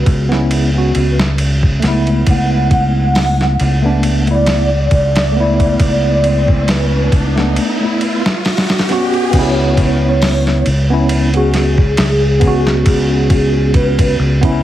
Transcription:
Already playing: tine electric piano B3 C#4 F#4
0.06 fingered electric bass C#2, kick, ride
0.29 tine electric piano B3 C#4 E4, snare
0.51 ride
0.74 tine electric piano B3 C#4 F#4
0.95 fingered electric bass C#2, ride
1.19 snare
1.38 ride
1.63 kick
1.80 tine electric piano A3 B3, snare, ride
1.84 fingered electric bass C#2, tine electric piano E4
2.07 ride
2.27 fingered electric bass C#2, soft synth lead F#5, kick, ride, riser
2.71 kick, ride
2.98 soft synth lead F#5
3.15 snare, open hi-hat
3.41 snare
3.60 fingered electric bass C#2, ride
3.82 tine electric piano A3 B3 D4
4.03 ride
4.26 tine electric piano A3 B3, soft synth lead D5, ride
4.31 tine electric piano E4
4.46 snare, ride
4.91 fingered electric bass C#2, soft synth lead D5, kick, ride
5.16 snare, ride
5.32 tine electric piano A3
5.36 tine electric piano B3 E4
5.60 kick, ride
5.80 fingered electric bass C#2, soft synth lead D5, kick, ride
6.24 ride
6.48 kick
6.68 soft synth lead B4, snare, ride
7.12 fingered electric bass C#2, kick, ride
7.36 tine electric piano A3 B3 D4, snare
7.56 ride
7.81 tine electric piano A3 B3 E4
8.01 ride
8.26 snare
8.45 snare, open hi-hat
8.57 snare, open hi-hat
8.69 snare, open hi-hat
8.79 snare, open hi-hat
8.89 tine electric piano B3 C#4 F#4, snare, ride
9.14 ride
9.31 fingered electric bass C#2, tine electric piano B3, soft synth lead C#5, kick, crash, ride
9.35 tine electric piano C#4 E4
9.77 kick, ride
10.04 soft synth lead C#5
10.22 snare, open hi-hat
10.47 snare
10.66 fingered electric bass C#2, ride
10.90 tine electric piano B3 C#4 E4
11.09 ride
11.34 tine electric piano B3 C#4 F#4, soft synth lead G#4, ride
11.54 snare, ride
11.78 kick
11.97 fingered electric bass C#2, soft synth lead G#4, snare, ride
12.40 tine electric piano B3 C#4, kick, ride
12.48 tine electric piano F#4
12.67 snare
12.86 fingered electric bass C#2, soft synth lead G#4, kick, ride
13.30 kick, ride
13.74 soft synth lead B4, kick, ride
13.99 kick, ride
14.19 fingered electric bass C#2
14.41 tine electric piano B3 C#4 E4, kick, ride

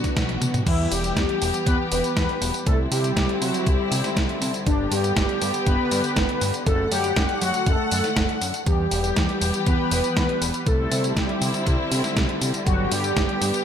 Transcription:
Already playing: string section D3 F#3 B3 F#4, analog polysynth D4
0.04 kick, snare, closed hi-hat, tambourine
0.17 analog synth bass B1, kick, snare, closed hi-hat, high tom, tambourine
0.29 closed hi-hat, high tom
0.42 analog synth bass B2, closed hi-hat, mid tom, tambourine
0.54 closed hi-hat, mid tom, tambourine
0.66 analog synth bass E2, string section E3 G3 B3 G4, analog polysynth E3 E4, kick, closed hi-hat, crash, tambourine
0.92 analog synth bass E1, analog polysynth G3 G4, open hi-hat, tambourine
1.04 closed hi-hat, tambourine
1.17 analog synth bass E2, kick, snare, closed hi-hat, tambourine
1.29 closed hi-hat
1.42 analog synth bass E1, open hi-hat, tambourine
1.54 closed hi-hat, tambourine
1.67 analog synth bass E2, analog polysynth B3 B4, kick, closed hi-hat, tambourine
1.92 analog synth bass E1, analog polysynth B3 B4, open hi-hat, tambourine
2.04 closed hi-hat, tambourine
2.17 analog synth bass E2, kick, snare, closed hi-hat, tambourine
2.29 closed hi-hat
2.42 analog synth bass E1, open hi-hat, tambourine
2.54 closed hi-hat, tambourine
2.67 analog synth bass C2, string section D3 C4 E4, analog polysynth A3 A4, kick, closed hi-hat, tambourine
2.91 analog synth bass C3, analog polysynth G3 G4, open hi-hat, tambourine
3.04 closed hi-hat, tambourine
3.17 analog synth bass C2, kick, snare, closed hi-hat, tambourine
3.29 closed hi-hat
3.41 analog synth bass C3, analog polysynth F#3 F#4, open hi-hat, tambourine
3.54 closed hi-hat, tambourine
3.67 analog synth bass C2, analog polysynth G3 G4, kick, closed hi-hat, tambourine
3.91 analog synth bass C3, open hi-hat, tambourine
4.04 snare, closed hi-hat, tambourine
4.17 analog synth bass C2, kick, snare, closed hi-hat, tambourine
4.29 closed hi-hat
4.42 analog synth bass C3, open hi-hat, tambourine
4.54 closed hi-hat, tambourine
4.67 analog synth bass G1, analog polysynth D3 D4, string section B3 G4, kick, closed hi-hat, tambourine
4.91 analog synth bass G2, analog polysynth G3 G4, open hi-hat, tambourine
5.04 closed hi-hat, tambourine
5.17 analog synth bass G1, kick, snare, closed hi-hat, tambourine
5.29 closed hi-hat
5.42 analog synth bass G2, open hi-hat, tambourine
5.54 closed hi-hat, tambourine
5.67 analog synth bass G1, analog polysynth B3 B4, kick, closed hi-hat, tambourine
5.91 analog synth bass G2, analog polysynth B3 B4, open hi-hat, tambourine
6.04 closed hi-hat, tambourine
6.16 analog synth bass G1, kick, snare, closed hi-hat, tambourine
6.29 closed hi-hat
6.41 analog synth bass G2, open hi-hat, tambourine
6.54 closed hi-hat, tambourine
6.66 analog synth bass F#1, string section A3 F#5, analog polysynth A3 A4, kick, closed hi-hat, tambourine
6.92 analog synth bass F#2, analog polysynth G3 G4, open hi-hat, tambourine
7.04 closed hi-hat, tambourine
7.16 analog synth bass F#1, kick, snare, closed hi-hat, tambourine
7.29 closed hi-hat
7.41 analog synth bass F#2, analog polysynth F#3 F#4, open hi-hat, tambourine
7.54 closed hi-hat, tambourine
7.67 analog synth bass F#1, analog polysynth A3 A4, kick, closed hi-hat, tambourine
7.91 analog synth bass F#2, open hi-hat, tambourine
8.04 snare, closed hi-hat, tambourine
8.17 analog synth bass F#1, kick, snare, closed hi-hat, tambourine
8.29 closed hi-hat
8.42 analog synth bass F#2, open hi-hat, tambourine
8.54 closed hi-hat, tambourine
8.66 analog synth bass E2, string section E3 G3 B3 G4, analog polysynth G3 G4, kick, closed hi-hat, tambourine
8.91 analog synth bass E1, open hi-hat, tambourine
9.04 closed hi-hat, tambourine
9.16 analog synth bass E2, kick, snare, closed hi-hat, tambourine
9.29 closed hi-hat
9.41 analog synth bass E1, open hi-hat, tambourine
9.54 closed hi-hat, tambourine
9.66 analog synth bass E2, analog polysynth B3 B4, kick, closed hi-hat, tambourine
9.91 analog synth bass E1, open hi-hat, tambourine
10.04 closed hi-hat, tambourine
10.17 analog synth bass E2, kick, snare, closed hi-hat, tambourine
10.29 closed hi-hat
10.41 analog synth bass E1, open hi-hat, tambourine
10.54 closed hi-hat, tambourine
10.66 analog synth bass C2, string section D3 C4 E4, analog polysynth A3 A4, kick, closed hi-hat, tambourine
10.92 analog synth bass C3, open hi-hat, tambourine
11.04 closed hi-hat, tambourine
11.17 analog synth bass C2, analog polysynth G3 G4, kick, snare, closed hi-hat, tambourine
11.29 closed hi-hat
11.42 analog synth bass C3, open hi-hat, tambourine
11.54 closed hi-hat, tambourine
11.67 analog synth bass C2, kick, closed hi-hat, tambourine
11.91 analog synth bass C3, open hi-hat, tambourine
12.04 snare, closed hi-hat, tambourine
12.17 analog synth bass C2, kick, snare, closed hi-hat, tambourine
12.29 closed hi-hat
12.41 analog synth bass C3, open hi-hat, tambourine
12.54 closed hi-hat, tambourine
12.67 analog synth bass G1, analog polysynth F#3 F#4, string section B3 G4, kick, closed hi-hat, tambourine
12.92 analog synth bass G2, analog polysynth G3 G4, open hi-hat, tambourine
13.04 closed hi-hat, tambourine
13.17 analog synth bass G1, kick, snare, closed hi-hat, tambourine
13.29 closed hi-hat
13.41 analog synth bass G2, open hi-hat, tambourine
13.54 closed hi-hat, tambourine

